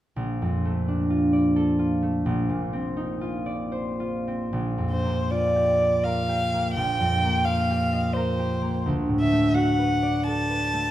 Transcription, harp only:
0.16 A#1
0.42 F2
0.65 A3
0.88 D4
1.10 F4
1.33 D5
1.56 A4
1.79 F4
2.02 A3
2.26 A#1
2.49 A#2
2.73 C4
2.97 D#4
3.21 F4
3.46 D5
3.72 C5
4.00 F4
4.28 C4
4.53 A#1
4.78 F2
5.05 A#3
5.32 F4
5.56 G4
5.82 D5
6.05 A#4
6.29 G4
6.54 A#3
6.76 A#1
7.00 F2
7.24 A#3
7.47 F4
7.70 G4
7.93 D#5
8.16 A#4
8.39 G4
8.62 A#3
8.86 D2
9.09 A2
9.32 A3
9.55 F#4
9.79 B4
10.03 D5
10.27 A4
10.50 B4
10.73 A3

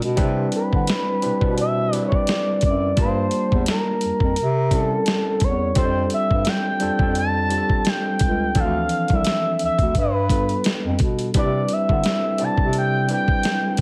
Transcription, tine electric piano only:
Already playing: G#3 C4 D4 F4 A#4
0.16 G3 C4 D4 E4 B4
1.22 G3 C4 D4 E4 B4
1.40 G3 D4 E4 B4 C5
1.92 G3 C4 D4 E4 B4
2.96 G3 A3 D4 F4 A5
3.03 A#3
4.71 G3 C4 C#4 E4 A#4
5.75 G3 C4 D4 F4 A4
6.80 G3 C4 D4 F4 A4
7.00 G3 C4 D4 F4 A4
7.49 G3 C4 D4 F4 G4
7.58 A4
8.55 E3 F3 C4 D4 A4
10.29 G3 B3 D4 F4 A4
11.34 G3 C4 D4 E4 B4
11.89 G3 C4 D4 E4 A4
12.39 G3 C4 D4 E4 D5
13.09 G3 C4 D4 E4 B4

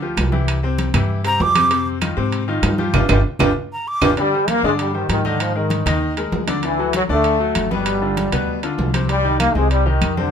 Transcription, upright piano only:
0.02 F3 F4 G4
0.32 E3 E4 G4
0.63 C3 C4 C5
0.94 E3 E4 G4
1.24 C3 C4 C5
1.55 C3 C4 C5
1.71 C3 C4 C5
2.02 D#3 D#4 F4
2.17 C3 C4 C5
2.48 D#3 D#4 F4
2.79 F3 F4 G4
2.94 D4 F4 G4
3.09 D4 F4 G4
3.40 D4 F4 G4
4.02 D4 F4 G4
4.17 D3 D4 D5
4.34 G3 G4 C5
4.64 D3 D4 D5
4.94 G3 G4 C5
5.25 D#3 D#4 D#5
5.55 G#3 G#4 A#4
5.86 D#3 D#4 D#5
6.17 G#3 G#4 A#4
6.47 D3 D4 D5
6.64 D3 D4 D5
6.79 F#3 F#4 A4
7.09 D3 D4 D5
7.40 F#3 F#4 A4
7.71 B2 B3 B4
8.02 D3 D4 F4
8.32 B2 B3 B4
8.63 D3 D4 F4
8.94 C3 C4 C5
9.08 C3 C4 C5
9.24 D#3 D#4 G4
9.56 C3 C4 C5
9.86 D#3 D#4 G4
10.17 C3 C4 C5

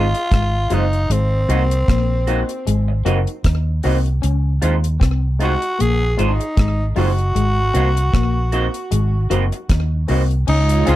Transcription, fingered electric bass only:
Already playing: G#1
0.32 G#1
0.71 F#1
1.10 G#1
1.49 C2
1.89 A#1
2.67 G#1
3.06 F#1
3.45 D#2
3.85 C2
4.24 C#2
4.63 D#2
5.01 C2
5.81 A#1
6.19 G#1
6.58 G#1
6.97 F#1
7.35 G#1
7.75 C2
8.14 A#1
8.92 G#1
9.30 F#1
9.70 D#2
10.10 C2
10.48 C#2
10.88 C#2

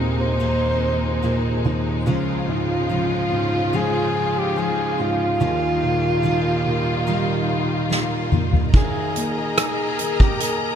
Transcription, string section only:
Already playing: D#2 C3 G#3 A#3 D#4
2.07 C#3 F3 F4
5.41 D#3 G3 A#3 F4
8.73 G#4 A#4 D#5 A#5

